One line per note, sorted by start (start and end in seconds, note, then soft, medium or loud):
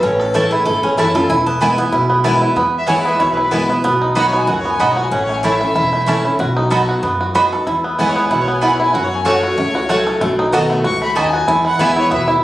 0.03 0.52 A1 loud
0.03 0.63 A2 loud
0.03 0.48 C#4 medium
0.03 0.21 C#5 loud
0.20 0.63 A4 medium
0.20 0.34 B4 medium
0.34 0.64 E3 medium
0.34 0.65 A3 loud
0.34 0.44 A3 medium
0.34 0.65 A3 medium
0.34 0.65 C#4 loud
0.34 0.44 E4 loud
0.34 0.65 E4 loud
0.34 0.50 A4 medium
0.34 0.44 C#5 loud
0.34 0.45 A5 loud
0.51 0.97 E4 medium
0.51 0.65 G#4 medium
0.65 0.93 G#1 medium
0.65 1.27 E2 medium
0.65 1.12 A3 medium
0.65 0.82 A4 loud
0.83 1.27 C#4 medium
0.83 0.97 G#4 medium
0.97 1.25 F#1 medium
0.97 1.14 E3 medium
0.97 1.08 A3 medium
0.97 1.14 A3 medium
0.97 1.15 C#4 medium
0.97 1.29 E4 medium
0.97 1.08 E4 loud
0.97 1.14 E4 medium
0.97 1.14 F#4 medium
0.97 1.08 C#5 medium
0.97 1.08 A5 loud
1.15 1.30 C#4 medium
1.15 1.29 E4 medium
1.15 1.29 F4 medium
1.15 1.30 A4 medium
1.29 1.78 E1 loud
1.29 1.90 E2 medium
1.29 1.60 E4 medium
1.29 1.46 G#5 medium
1.46 1.77 B3 medium
1.46 1.61 A5 medium
1.61 1.77 E3 medium
1.61 1.78 G#3 medium
1.61 1.71 B3 medium
1.61 1.78 B3 medium
1.61 1.71 E4 medium
1.61 1.91 E4 medium
1.61 1.76 E4 loud
1.61 1.71 B4 medium
1.61 1.71 G#5 loud
1.61 1.78 B5 loud
1.78 2.08 B3 medium
1.78 1.93 B3 soft
1.78 1.92 E4 medium
1.78 2.45 G#5 loud
1.92 2.42 B1 medium
1.92 2.53 B2 loud
1.92 2.23 E4 medium
2.10 2.53 B3 medium
2.24 2.55 E3 medium
2.24 2.55 G#3 medium
2.24 2.34 B3 medium
2.24 2.55 B3 medium
2.24 2.34 E4 medium
2.24 2.40 E4 medium
2.24 2.56 E4 medium
2.24 2.34 B4 loud
2.24 2.34 G#5 loud
2.42 2.56 E4 medium
2.56 3.05 E2 medium
2.56 3.17 E2 medium
2.56 3.05 B3 medium
2.78 2.87 E5 loud
2.87 3.18 E3 medium
2.87 3.19 G#3 medium
2.87 2.97 B3 medium
2.87 3.19 B3 medium
2.87 2.98 E4 medium
2.87 3.18 E4 medium
2.87 3.19 E4 loud
2.87 2.98 B4 medium
2.87 2.98 C#5 medium
2.87 2.98 G#5 medium
2.99 3.10 B4 medium
3.05 3.49 B3 medium
3.05 3.22 E5 medium
3.20 3.69 B1 medium
3.20 3.81 B2 medium
3.20 3.36 E4 medium
3.20 3.30 C#5 medium
3.31 3.41 B4 medium
3.37 3.51 E4 medium
3.42 3.72 B4 medium
3.51 3.68 E3 medium
3.51 3.69 G#3 medium
3.51 3.61 B3 medium
3.51 3.69 B3 medium
3.51 3.61 E4 medium
3.51 3.84 E4 medium
3.51 3.68 E4 medium
3.51 3.61 B4 loud
3.51 3.62 G#5 medium
3.69 3.83 B3 medium
3.69 3.84 B3 soft
3.69 3.83 E4 medium
3.84 4.33 B1 loud
3.84 4.45 B2 medium
3.84 4.30 B3 medium
4.02 4.45 D#4 medium
4.15 4.46 F#3 medium
4.15 4.25 B3 medium
4.15 4.46 B3 medium
4.15 4.47 D#4 medium
4.15 4.26 F#4 loud
4.15 4.46 F#4 medium
4.15 4.47 F#4 loud
4.15 4.26 D#5 loud
4.15 4.26 F#5 loud
4.15 4.26 B5 loud
4.27 4.38 C#5 loud
4.33 4.64 B3 medium
4.33 4.50 G#5 medium
4.47 4.75 C#2 medium
4.47 4.78 F#2 medium
4.47 4.93 F#4 medium
4.47 4.59 F#5 medium
4.59 4.71 C#5 medium
4.65 5.09 B3 medium
4.70 4.82 G#5 loud
4.79 5.07 B1 medium
4.79 5.10 G#2 medium
4.79 4.89 B3 medium
4.79 5.12 D#4 medium
4.79 4.89 F#4 medium
4.79 4.90 D#5 loud
4.79 4.92 F#5 medium
4.79 4.90 B5 loud
4.91 5.04 C#5 loud
4.97 5.11 F#4 medium
5.02 5.14 G#5 medium
5.11 5.60 A1 loud
5.11 5.72 A2 medium
5.11 5.57 C#4 medium
5.11 5.22 F#5 medium
5.24 5.35 C#5 medium
5.29 5.60 A3 medium
5.34 5.44 G#5 loud
5.43 5.60 E3 loud
5.43 5.53 A3 medium
5.43 5.60 A3 medium
5.43 5.60 C#4 medium
5.43 5.53 E4 medium
5.43 5.74 E4 medium
5.43 5.60 E4 loud
5.43 5.53 C#5 loud
5.43 6.37 E5 loud
5.43 5.54 A5 medium
5.61 5.92 A3 medium
5.61 5.76 C#4 soft
5.61 5.75 E4 medium
5.75 6.24 E1 medium
5.75 6.36 E2 medium
5.75 6.21 E4 medium
5.93 6.36 A3 medium
6.06 6.23 E3 medium
6.06 6.17 A3 medium
6.06 6.24 A3 medium
6.06 6.39 C#4 medium
6.06 6.24 C#4 medium
6.06 6.17 E4 medium
6.06 6.23 E4 loud
6.06 6.17 C#5 medium
6.06 6.17 A5 loud
6.24 6.39 C#4 soft
6.24 6.38 E4 medium
6.24 6.39 E4 medium
6.39 6.88 B1 loud
6.39 7.00 B2 medium
6.39 6.85 F#4 medium
6.57 7.00 D#4 medium
6.70 7.01 F#3 medium
6.70 6.80 B3 medium
6.70 7.01 B3 medium
6.70 7.02 D#4 medium
6.70 6.81 F#4 medium
6.70 7.02 F#4 loud
6.70 7.17 A4 medium
6.70 6.81 D#5 loud
6.70 6.81 B5 medium
6.89 7.19 F#4 medium
7.03 7.63 F#2 medium
7.03 7.52 F#2 medium
7.03 7.34 B3 medium
7.21 7.64 F#4 medium
7.35 7.51 F#3 medium
7.35 7.44 B3 medium
7.35 7.67 B3 medium
7.35 7.51 B3 medium
7.35 7.52 D#4 medium
7.35 7.45 F#4 loud
7.35 7.51 F#4 medium
7.35 7.45 D#5 loud
7.35 7.45 B5 medium
7.52 7.67 D#4 soft
7.52 7.66 F#4 medium
7.52 7.67 A4 medium
7.67 8.15 E2 medium
7.67 8.27 E2 medium
7.67 7.98 E4 medium
7.84 8.15 B3 medium
7.99 8.29 E3 medium
7.99 8.29 G#3 loud
7.99 8.08 B3 medium
7.99 8.30 B3 medium
7.99 8.30 E4 medium
7.99 8.09 E4 medium
7.99 8.30 E4 loud
7.99 8.09 B4 medium
7.99 8.11 F#5 loud
7.99 8.09 G#5 medium
8.10 8.22 C#5 medium
8.16 8.47 B3 medium
8.20 8.31 G#5 medium
8.30 8.79 B1 medium
8.30 8.91 B2 medium
8.30 8.61 E4 medium
8.30 8.43 F#5 medium
8.41 8.53 C#5 medium
8.48 8.91 B3 medium
8.48 8.62 G#5 medium
8.61 8.93 E2 medium
8.61 8.71 B3 medium
8.61 8.71 E4 medium
8.61 8.78 E4 medium
8.61 8.72 B4 loud
8.61 8.75 F#5 medium
8.61 8.72 G#5 loud
8.73 8.83 C#5 medium
8.80 8.94 E4 medium
8.80 8.95 G#5 medium
8.94 9.43 F#2 medium
8.94 9.55 F#2 medium
8.94 9.43 F#4 medium
8.94 9.05 F#5 medium
9.04 9.16 C#5 loud
9.14 9.27 G#5 medium
9.25 9.56 F#3 medium
9.25 9.35 A3 loud
9.25 9.56 A3 loud
9.25 9.56 C#4 loud
9.25 9.35 F#4 medium
9.25 9.57 F#4 loud
9.25 9.71 A4 medium
9.25 9.35 C#5 medium
9.25 10.18 C#5 loud
9.25 9.35 F#5 loud
9.43 9.74 F#4 medium
9.58 10.07 C#2 medium
9.58 10.18 C#3 medium
9.58 9.88 A3 medium
9.75 10.18 F#4 medium
9.89 10.20 F#3 medium
9.89 9.99 A3 medium
9.89 10.20 A3 medium
9.89 10.20 C#4 medium
9.89 9.99 F#4 medium
9.89 10.20 F#4 medium
9.89 9.99 C#5 loud
9.89 9.99 F#5 loud
10.07 10.21 A4 medium
10.21 10.70 B1 medium
10.21 10.82 B2 loud
10.21 10.67 A3 medium
10.39 10.82 D#4 medium
10.52 10.83 D#3 medium
10.52 10.83 A3 loud
10.52 10.63 B3 medium
10.52 10.84 B3 loud
10.52 10.83 F#4 medium
10.52 10.63 F#4 medium
10.52 10.84 F#4 loud
10.52 10.63 D#5 medium
10.52 10.63 A5 loud
10.70 11.00 A3 medium
10.84 11.12 C#2 medium
10.84 11.15 G#2 medium
10.84 11.30 F#4 medium
10.84 11.02 C#6 loud
11.02 11.45 A3 medium
11.02 11.16 B5 loud
11.15 11.43 D#2 medium
11.15 11.46 F#2 medium
11.15 11.26 B3 medium
11.15 11.48 D#4 medium
11.15 11.26 F#4 loud
11.15 11.26 D#5 loud
11.15 11.64 G#5 loud
11.15 11.26 A5 loud
11.33 11.47 F#4 medium
11.48 11.72 E2 loud
11.48 12.09 E2 loud
11.48 11.63 E4 medium
11.65 11.78 E4 medium
11.65 11.83 F#5 loud
11.79 12.07 E2 medium
11.79 12.10 E3 loud
11.79 12.10 G#3 medium
11.79 11.90 B3 medium
11.79 12.11 B3 medium
11.79 11.95 E4 medium
11.79 11.90 E4 loud
11.79 12.11 E4 loud
11.79 11.90 B4 loud
11.79 11.97 E5 medium
11.79 11.90 G#5 loud
11.96 12.26 E4 medium
11.96 12.11 C#5 loud
12.11 12.38 D#2 medium
12.11 12.44 B2 medium
12.11 12.42 B3 medium
12.11 12.28 E5 loud
12.28 12.44 E4 medium